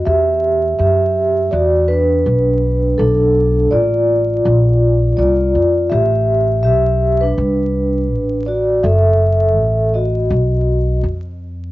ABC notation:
X:1
M:4/4
L:1/16
Q:"Swing 16ths" 1/4=82
K:Em
V:1 name="Vibraphone"
[Ge]4 [Ge]4 [Fd]2 [DB]6 | [DA]4 [=Fd]8 [^Ed]4 | [Ge]4 [Ge]3 [DB]6- [DB] [Fd]2 | [Ae]6 [F^d]6 z4 |]
V:2 name="Upright bass" clef=bass
E,,4 F,,4 E,,4 B,,,4 | B,,,4 A,,,4 ^A,,,4 ^B,,,2 ^E,,2 | A,,,4 B,,,4 C,,4 A,,,4 | F,,,4 A,,,4 B,,,4 =F,,4 |]